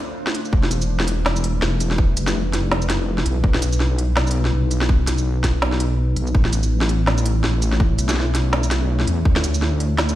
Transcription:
Already playing: ambient pad A3 D4 F4 C5
0.27 snare
0.35 closed hi-hat
0.45 shaker
0.53 wobble bass E1, ambient pad G3 E4 B4, kick
0.63 snare
0.71 closed hi-hat, shaker
0.82 shaker
1.00 snare
1.08 closed hi-hat
1.26 snare
1.36 shaker
1.44 closed hi-hat
1.62 wobble bass E1, snare
1.80 closed hi-hat, shaker
1.91 snare
1.98 kick
2.17 wobble bass F1, closed hi-hat, shaker
2.27 snare, shaker
2.53 snare, closed hi-hat
2.71 snare
2.82 shaker
2.90 snare, closed hi-hat
3.18 snare
3.25 wobble bass B1, closed hi-hat
3.44 wobble bass B1, ambient pad F#3 B3 D#4, kick
3.54 snare
3.62 closed hi-hat, shaker
3.73 shaker
3.80 snare
3.99 closed hi-hat
4.17 snare
4.27 closed hi-hat, shaker
4.45 snare
4.53 wobble bass B1
4.71 closed hi-hat, shaker
4.81 snare
4.89 kick
5.07 wobble bass B1, snare, closed hi-hat, shaker
5.18 shaker
5.44 kick, snare, closed hi-hat
5.62 snare
5.72 snare
5.80 closed hi-hat
6.16 wobble bass B1, closed hi-hat
6.27 shaker
6.34 wobble bass A1, ambient pad A3 C#4 E4 C#5, kick
6.45 snare
6.53 closed hi-hat, shaker
6.63 shaker
6.81 snare
6.89 closed hi-hat
7.07 snare
7.18 shaker
7.26 closed hi-hat
7.44 wobble bass A1, snare
7.62 closed hi-hat, shaker
7.72 snare
7.80 kick
7.98 wobble bass B1, closed hi-hat, shaker
8.09 snare, shaker
8.11 snare
8.14 snare
8.16 snare
8.20 snare
8.23 snare
8.35 snare, closed hi-hat
8.53 snare
8.63 shaker
8.71 snare, closed hi-hat
9.00 snare
9.07 wobble bass E2, closed hi-hat
9.25 wobble bass D2, ambient pad D4 F4 C5, kick
9.36 snare
9.44 closed hi-hat, shaker
9.54 shaker
9.62 snare
9.80 closed hi-hat
9.98 snare
10.09 shaker

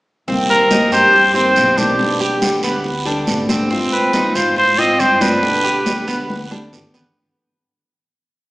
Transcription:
0.28 upright bass C2, steel-string acoustic guitar C3 D#3 A#3 C4 G4, cuban tres C4, high conga, long guiro
0.50 trumpet A#4, high conga
0.70 steel-string acoustic guitar D#3 A#3 C4 G4, cuban tres D#4, high conga, short guiro
0.91 upright bass G2, cuban tres G4, trumpet C5, short guiro
1.13 muted steel-string acoustic guitar stroke, high conga, long guiro
1.34 steel-string acoustic guitar D#3 A#3 C4 G4, cuban tres C4, trumpet C5, high conga
1.56 upright bass B1, steel-string acoustic guitar D#3 A#3 C4 G4, high conga, short guiro
1.77 steel-string acoustic guitar D#3 A#3 C4 G4, cuban tres D4, trumpet G4, high conga, short guiro
1.98 steel-string acoustic guitar B2 D3 G3 B3 G4, high conga, long guiro
2.20 cuban tres G4, high conga
2.41 steel-string acoustic guitar D3 G3 B3 G4, high conga, short guiro
2.63 upright bass D2, cuban tres B3, high conga, short guiro
2.84 muted steel-string acoustic guitar stroke, high conga, long guiro
3.05 steel-string acoustic guitar D3 G3 B3 G4, cuban tres D4, high conga
3.27 upright bass G#1, steel-string acoustic guitar D3 G3 B3 G4, high conga, short guiro
3.48 steel-string acoustic guitar D3 G3 B3 G4, cuban tres C4, high conga, short guiro
3.70 steel-string acoustic guitar G#3 C4 F4, cuban tres C4, high conga, long guiro
3.92 trumpet B4, high conga
4.13 steel-string acoustic guitar G#3 C4 F4, cuban tres D#4, high conga, short guiro
4.35 upright bass G#2, cuban tres F4, trumpet C5, short guiro
4.56 trumpet C5, muted steel-string acoustic guitar stroke, high conga, long guiro
4.78 cuban tres C4, steel-string acoustic guitar C4 F4, trumpet D#5, high conga
4.99 upright bass G2, steel-string acoustic guitar G#3 C4 F4, trumpet C5, high conga, short guiro
5.20 steel-string acoustic guitar C4 F4, cuban tres D4, trumpet B4, high conga, short guiro
5.42 steel-string acoustic guitar B2 D3 G3 B3 G4, high conga, long guiro
5.64 cuban tres G4, high conga
5.85 steel-string acoustic guitar D3 G3 B3 G4, high conga, short guiro
6.08 upright bass D2, cuban tres B3, high conga, short guiro
6.29 muted steel-string acoustic guitar stroke, high conga, long guiro
6.51 steel-string acoustic guitar D3 G3 B3 G4, cuban tres D4, high conga
6.72 upright bass G1, steel-string acoustic guitar D3 G3 B3 G4, low conga, short guiro
6.94 steel-string acoustic guitar D3 G3 B3 G4, cuban tres B3, low conga, short guiro

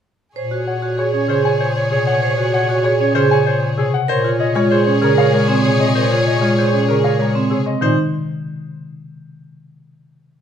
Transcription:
0.36 bass clarinet A#2, violin section G#4 C#5, vibraphone C5, clarinet C#5
0.51 vibraphone F#4, clarinet C#5
0.67 clarinet C#5, grand piano F#5
0.82 vibraphone F#4, clarinet C#5
0.98 vibraphone G#4, clarinet C#5, grand piano C#5
1.13 vibraphone C#4, clarinet C#5
1.28 marimba C#3, vibraphone G#4, grand piano C5, clarinet C#5
1.45 clarinet C#5, grand piano G#5
1.60 grand piano C5, clarinet C#5
1.76 clarinet C#5
1.91 marimba C3, grand piano G#4, clarinet C#5
2.06 clarinet C#5, grand piano F#5
2.22 vibraphone C5, clarinet C#5
2.38 vibraphone F#4, clarinet C#5
2.54 clarinet C#5, grand piano F#5
2.69 vibraphone F#4, clarinet C#5
2.84 vibraphone G#4, grand piano C#5, clarinet C#5
3.00 vibraphone C#4, clarinet C#5
3.15 marimba C#3, vibraphone G#4, grand piano C5, clarinet C#5
3.31 clarinet C#5, grand piano G#5
3.47 grand piano C5, clarinet C#5
3.62 clarinet C#5
3.78 marimba C3, grand piano G#4, clarinet C#5
3.94 grand piano F#5
4.08 bass clarinet A#2, violin section G#4 C#5, vibraphone A#4, grand piano C5, clarinet C#5
4.24 vibraphone F4, clarinet C#5
4.39 clarinet C#5, grand piano D#5
4.55 marimba G#3, vibraphone F4, clarinet C#5, grand piano C#5
4.70 vibraphone G#4, grand piano C5, clarinet C#5
4.86 vibraphone C#4, clarinet C#5
5.02 marimba C#3, vibraphone G#4, grand piano A#4, clarinet C#5
5.17 vibraphone A#4, clarinet C#5, grand piano F5
5.33 marimba G#3, grand piano A#4, clarinet C#5
5.48 vibraphone C4, clarinet C#5
5.64 marimba C3, grand piano G#4, clarinet C#5
5.79 vibraphone C4, clarinet C#5, grand piano D#5
5.95 vibraphone A#4, grand piano C5, clarinet C#5
6.11 vibraphone F4, clarinet C#5
6.26 clarinet C#5, grand piano D#5
6.41 marimba G#3, vibraphone F4, clarinet C#5, grand piano C#5
6.57 vibraphone G#4, grand piano C5, clarinet C#5
6.73 vibraphone C#4, clarinet C#5
6.88 marimba C#3, vibraphone G#4, grand piano A#4, clarinet C#5
7.04 vibraphone A#4, clarinet C#5, grand piano F5
7.19 marimba G#3, grand piano A#4, clarinet C#5
7.34 vibraphone C4, clarinet C#5
7.50 marimba C3, grand piano G#4, clarinet C#5
7.66 vibraphone C4, grand piano D#5
7.81 bass clarinet A#2, marimba D#3, vibraphone D#4, grand piano C5

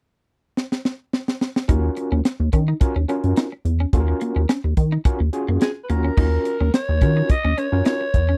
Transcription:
0.57 snare
0.72 snare
0.85 snare
1.13 snare
1.28 snare
1.41 snare
1.56 snare
1.68 analog synth bass D#2, tine electric piano C#4 F4 F#4 A#4, clean electric guitar D#4, kick, closed hi-hat
1.97 muted clean electric guitar stroke, closed hi-hat
2.12 analog synth bass D#2, clean electric guitar C#4
2.25 muted clean electric guitar stroke, snare, closed hi-hat
2.40 analog synth bass D#2
2.53 analog synth bass D#3, clean electric guitar C#4, kick, closed hi-hat
2.68 clean electric guitar D#4
2.81 tine electric piano C#4 F4 F#4 A#4, muted clean electric guitar stroke, kick, closed hi-hat
2.96 analog synth bass D#2, clean electric guitar C#4
3.09 tine electric piano C#4 F4 F#4 A#4, clean electric guitar C#4, closed hi-hat
3.24 analog synth bass F#2, closed hi-hat
3.36 clean electric guitar D#4, snare, closed hi-hat
3.52 muted clean electric guitar stroke
3.65 analog synth bass E2, closed hi-hat
3.80 clean electric guitar C#4
3.93 analog synth bass D#2, tine electric piano C#4 F4 F#4 A4, kick, closed hi-hat
4.00 tine electric piano A#4
4.08 muted clean electric guitar stroke
4.21 clean electric guitar A#3, closed hi-hat
4.36 analog synth bass D#2, clean electric guitar C#4
4.49 clean electric guitar C#4, snare, closed hi-hat
4.64 analog synth bass D#2, muted clean electric guitar stroke
4.77 analog synth bass D#3, kick, closed hi-hat
4.92 clean electric guitar D#4
5.05 tine electric piano C#4 F4 F#4 A#4, clean electric guitar C#4, kick, closed hi-hat
5.20 analog synth bass D#2, muted clean electric guitar stroke
5.33 tine electric piano C#4 F4 F#4 G#4, closed hi-hat
5.48 analog synth bass F#2, clean electric guitar A#3
5.61 alto saxophone G#4, muted clean electric guitar stroke, snare, closed hi-hat
5.84 alto saxophone B4
5.89 analog synth bass D#2, clean electric guitar A#3, tine electric piano C#4 F4 F#4 A#4, alto saxophone A#4, closed hi-hat
6.04 clean electric guitar C#4
6.17 analog synth bass D#2, tine electric piano C#4 F4 F#4 A#4, clean electric guitar D#4, kick, crash
6.45 muted clean electric guitar stroke, closed hi-hat
6.60 analog synth bass D#2, clean electric guitar C#4
6.74 alto saxophone C#5, muted clean electric guitar stroke, snare, closed hi-hat
6.89 analog synth bass D#2
7.01 analog synth bass D#3, tine electric piano C#4 F4 F#4 A#4, clean electric guitar C#4, kick, closed hi-hat
7.17 clean electric guitar D#4
7.29 alto saxophone D#5, muted clean electric guitar stroke, kick, closed hi-hat
7.44 analog synth bass D#2, clean electric guitar C#4
7.58 clean electric guitar C#4, alto saxophone C#5, closed hi-hat
7.72 analog synth bass F#2, tine electric piano C#4 F4 F#4 A#4
7.85 clean electric guitar D#4, alto saxophone C#5, snare, closed hi-hat
8.01 muted clean electric guitar stroke
8.14 analog synth bass E2, kick, closed hi-hat
8.29 clean electric guitar C#4

